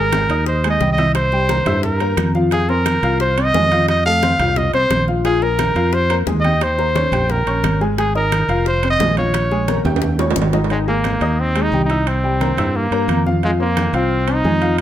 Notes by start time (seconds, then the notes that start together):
Already playing: G#1 G#3 G#4 A#4 G#5
0.12 high bongo, high conga, high timbale
0.29 D#2 D#4 D#5 D#6, high bongo, high timbale
0.46 C5, high bongo, high conga
0.64 G#3 G#4 G#5, high bongo, high conga, high timbale
0.70 D#5
0.80 C2 G3 G4 G5, high bongo, low bongo, high conga
0.92 D#5
0.98 E4 E5 E6, high conga, high timbale
1.15 C5, high bongo, high conga, high timbale
1.32 G3 G4 G5, high bongo, high conga
1.49 A#3 A#4 A#5, high bongo, high conga, high timbale
1.66 G2 E4 E5 E6, high conga, low conga, high timbale
1.83 A#4, high bongo, high conga, low conga
2.00 A#3 A#4 A#5, high bongo, high conga, high timbale
2.17 F2, high bongo, low bongo, high conga, high timbale
2.35 F3 F4 F5, high bongo, high conga
2.51 F3 F4 G#4 F5, high bongo, high timbale
2.69 C4 A#4 C5 C6, high bongo, high conga
2.86 high bongo, high conga, high timbale
3.03 C2 F4 F5 F6, high bongo, high timbale
3.20 C5, high bongo, high conga
3.37 C4 C5 C6, high bongo, high conga, high timbale
3.44 D#5
3.54 F2 G#3 G#4 G#5, high bongo, low bongo, high conga, low timbale
3.72 F4 F5 F6, high conga, high timbale
3.88 D#5, high bongo, high conga, high timbale
4.05 A3 A4 F5 A5, high bongo, high conga
4.23 C4 C5 C6, high bongo, high conga, high timbale
4.39 C2 F4 F5 F6, high conga, low conga, high timbale
4.56 D#5, high bongo, high conga, low conga
4.73 C4 C5 C6, high bongo, high conga, high timbale
4.90 A#1, high bongo, low bongo, high conga, high timbale
5.08 F3 F4 F5, high bongo
5.25 F3 F4 G#4 F5, high bongo, high timbale
5.42 A#3 A#4 A#5, high bongo, high conga
5.59 high bongo, high conga, high timbale
5.75 F2 F4 F5 F6, high bongo, high timbale
5.93 C5, high bongo, high conga
6.10 A#3 A#4 A#5, high bongo, high conga, high timbale
6.26 D#2 G#3 G#4 G#5, high bongo, low bongo, high conga
6.40 D#5, high conga
6.44 G4 G5 G6, high timbale
6.61 C5, high bongo, high conga, high timbale
6.78 A#3 A#4 A#5, high bongo, high conga
6.95 C#4 C#5 C#6, high bongo, high conga, high timbale
7.12 A#1 G4 G5 G6, high conga, low conga, high timbale
7.30 A#4, high bongo, high conga, low conga
7.46 A#1 C#4 C#5 C#6, high bongo, high conga, high timbale
7.63 G#1, high bongo, low bongo, high conga, high timbale
7.81 G#3 G#4 G#5, high bongo
7.98 G#3 G#4 G#5, high bongo, high conga, high timbale
8.15 D#4 A#4 D#5 D#6, high bongo, high conga
8.32 high bongo, high conga, high timbale
8.49 F1 F4 F5 F6, high bongo, high timbale
8.66 C5, high bongo, high conga
8.83 C4 C5 C6, high bongo, high conga, high timbale
8.90 D#5
8.99 A#1 G#3 G#4 G#5, high bongo, low bongo, high conga, low timbale
9.17 F4 C#5 F5 F6, high conga, high timbale
9.34 high bongo, high conga, high timbale
9.51 G#3 G#4 G#5, high bongo, high conga
9.68 A#3 A#4 A#5, high bongo, high conga, high timbale
9.85 D#2 G4 G5 G6, high conga, low conga, high timbale
9.96 high timbale
10.02 high bongo, high conga, low conga
10.19 C#4 C#5 C#6, high bongo, high conga, low timbale
10.31 low timbale
10.36 G#1, low bongo, high conga
10.42 low timbale
10.53 D#3 D#4 D#5, low bongo, low timbale
10.64 low timbale
10.70 D#3 G#3 D#4 D#5, high conga, high timbale
10.88 G#3 A#3 G#4 G#5, high conga
11.04 high conga, high timbale
11.21 D#2 D#4 D#5 D#6, high conga, high timbale
11.39 C4, high conga
11.56 G#3 G#4 G#5, high conga, high timbale
11.62 D#4
11.72 C2 G3 G4 G5, high conga
11.85 D#4
11.90 E4 E5 E6, high conga, high timbale
12.07 C4, high conga, high timbale
12.24 G3 G4 G5, high conga
12.41 A#3 A#4 A#5, high conga, high timbale
12.57 G2 E4 E5 E6, high conga, low conga, high timbale
12.75 A#3, high conga
12.91 G2 A#3 A#4 A#5, high conga, high timbale
13.08 F2, high conga, high timbale
13.26 F3 F4 F5, high conga
13.43 F3 G#3 F4 F5, high conga, high timbale
13.60 A#3 C4 C5 C6, high conga
13.77 high conga, high timbale
13.93 C2 C4 F4 F5 F6, high conga, high timbale
14.11 high conga
14.28 C4 C5 C6, high conga, high timbale
14.34 D#4
14.44 F2 G#3 G#4 G#5, high conga
14.61 F4 F5 F6, high conga, high timbale